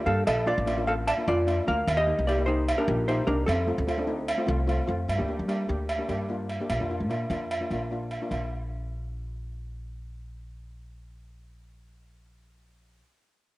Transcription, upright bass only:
0.06 G2
0.27 A#1
0.58 A1
1.28 F2
1.68 D2
1.87 D#2
2.19 C2
2.88 A#1
3.27 C2
3.48 F2
3.78 D2
4.48 C2
4.88 F2
5.08 G2
5.19 D2
5.39 G3
5.69 D2
6.09 G2
6.70 A#1
6.80 F2
7.00 A#2
7.30 F2
7.70 A#1
8.31 A#1

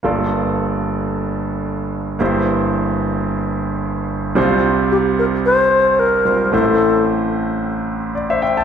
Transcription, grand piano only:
0.03 G1 G2 A#3 F4 A4 D5
2.19 G1 G2 A#3 E4 G4 C5
4.35 C2 C3 G3 C4 E4 C5
4.43 F4
6.25 G3 C4 F4 C5
6.52 A1 A2 A3 C4 E4 C5
8.15 D5
8.30 C5 E5
8.42 E5 G5
8.57 A5

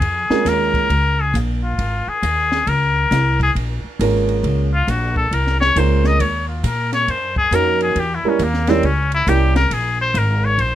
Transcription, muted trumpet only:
Already playing: G#4
0.48 A#4
1.21 G#4
1.64 F4
2.09 G#4
2.69 A#4
3.43 G#4
4.74 F4
4.90 F#4
5.17 A4
5.34 A#4
5.60 C#5
5.79 C5
6.06 D#5
6.21 C#5
6.48 F4
6.66 A#4
6.94 C#5
7.10 C5
7.38 G#4
7.55 A#4
7.83 G#4
7.99 G4
8.15 E4
8.29 C#4
8.43 A#3
8.70 C4
8.85 C#4
9.15 E4
9.29 G4
9.56 A#4
9.73 G#4
10.01 C5
10.18 A#4
10.45 C#5
10.61 C5

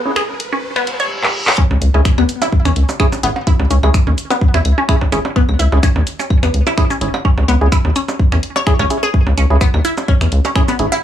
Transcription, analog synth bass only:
1.71 C#2
1.81 C#2
1.94 C#2
2.18 D#2
2.65 E2
2.76 C#2
3.23 G#1
3.60 C#2
3.71 C#2
3.83 C#2
4.07 D#2
4.54 E2
4.65 C#2
5.12 G#1
5.49 C#2
5.59 C#2
5.72 C#2
5.96 D#2
6.43 E2
6.54 C#2
7.01 G#1
7.38 C#2
7.49 C#2
7.61 C#2
7.85 D#2
8.32 E2
8.80 C#2
9.27 C#2
9.38 C#2
9.50 C#2
9.74 D#2
10.21 E2
10.32 C#2
10.79 G#1

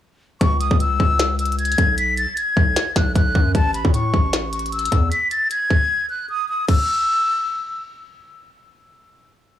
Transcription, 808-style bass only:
0.41 C#2
0.71 C#2
1.00 C#2
1.78 B1
2.57 B1
2.96 B1
3.16 B1
3.35 F#2
3.55 A1
3.85 A2
4.14 A1
4.92 E2

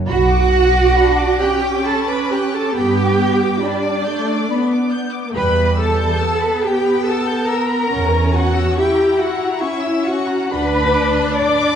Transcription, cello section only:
0.07 F#4
1.40 G4
1.86 A4
2.09 B4
2.32 G4
2.54 A4
2.76 G4
3.63 D4
5.36 B4
5.80 A4
6.65 G4
7.07 A4
7.50 A#4
8.34 F#4
8.76 G4
9.19 F#4
9.61 E4
10.06 F#4
10.52 B4
11.35 D5

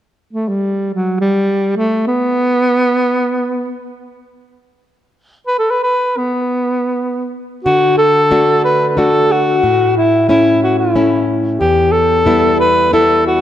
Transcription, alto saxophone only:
0.33 A3
0.49 G3
0.94 F#3
1.21 G3
1.77 A3
2.08 B3
5.47 B4
5.59 A4
5.70 B4
5.83 B4
6.18 B3
7.65 F#4
7.98 A4
8.65 B4
8.89 B4
8.99 A4
9.32 F#4
9.97 E4
10.29 E4
10.63 F#4
10.79 E4
11.60 G4
11.92 A4
12.60 B4
12.93 A4
13.27 F#4

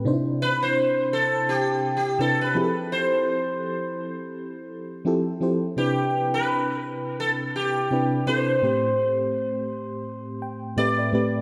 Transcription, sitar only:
0.42 B4
0.62 C5
1.13 A4
1.49 G4
1.97 G4
2.21 A4
2.41 B4
2.92 C5
5.78 G4
6.34 B4
7.20 A4
7.56 G4
8.27 C5
10.78 D5

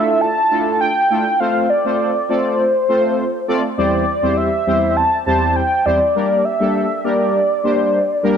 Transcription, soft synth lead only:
Already playing: E5
0.21 A5
0.81 G5
1.10 G5
1.40 F5
1.70 D5
2.29 C5
3.78 D5
4.37 E5
4.97 A5
5.26 A5
5.56 G5
5.86 D5
6.45 E5
7.04 D5

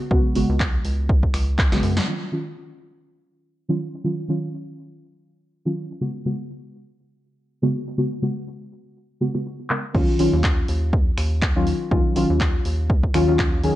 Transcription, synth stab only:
0.11 C#3 G#3 B3 F#4
0.35 C#3 G#3 B3 F#4
1.72 C#3 G#3 B3 F#4
2.07 D#3 F#3 C#4 F4
2.32 D#3 F#3 C#4 F4
3.69 D#3 F#3 C#4 F4
4.04 D#3 F#3 C#4 F4
4.28 D#3 F#3 C#4 F4
5.65 D#3 F#3 C#4 F4
6.01 C#3 G#3 B3 F#4
6.25 C#3 G#3 B3 F#4
7.62 C#3 G#3 B3 F#4
7.98 C#3 G#3 B3 F#4
8.22 C#3 G#3 B3 F#4
9.21 C#3 G#3 B3 F#4
9.34 C#3 G#3 B3 F#4
9.70 C#3 G#3 B3 A#4
9.94 D#3 F#3 C#4 F4
10.19 D#3 F#3 C#4 F4
11.55 D#3 F#3 C#4 F4
11.91 D#3 F#3 C#4 F4
12.15 D#3 F#3 C#4 F4
13.14 D#3 F#3 C#4 F4
13.28 D#3 F#3 C#4 F4
13.63 D#3 F#3 C#4 G#4

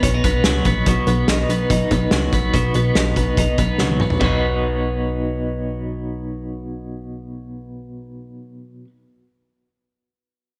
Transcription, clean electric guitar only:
Already playing: B2 F#3 B3
0.03 C#4
0.14 D#4
0.25 B3
0.46 F#3
0.66 B3
0.88 B2
1.08 B3
1.29 D#4
1.50 B3
1.71 D#4
1.91 B3
2.13 F#3
2.34 B3
2.54 B2
2.75 B3
2.96 D#4
3.17 B3
3.38 D#4
3.59 B3
3.80 F#3
4.01 B3
4.20 B2 F#3
4.24 B3 D#4

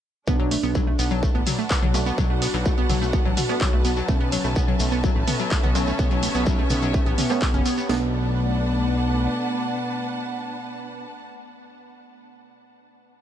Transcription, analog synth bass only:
0.28 B1
0.63 B1
0.99 B1
1.35 A1
1.82 B1
2.18 B1
2.54 B1
2.89 B1
3.25 A1
3.73 B1
4.08 B1
4.44 B1
4.80 B1
5.16 A1
5.63 B1
5.99 B1
6.35 B1
6.70 B1
7.06 A1
7.54 F#1
7.89 B1

